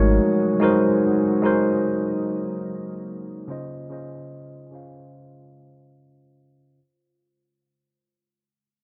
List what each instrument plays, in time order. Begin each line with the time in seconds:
Already playing: 808-style bass G#1, ambient pad C#3 F#3 G#3 D#4, tine electric piano G#3 D#4 F#4 A#4 C#5
0.60 tine electric piano G#3 D#4 F#4 A#4 C5
1.42 tine electric piano G#3 D#4 F#4 A#4 C5, ambient pad A#3
3.48 tine electric piano C#3 C#4 F4 C5 D#5, ambient pad G#3 F4 C5
3.89 tine electric piano C#3 C#4 F4 C5 D#5
4.71 tine electric piano C#3 C#4 F4 C5 F5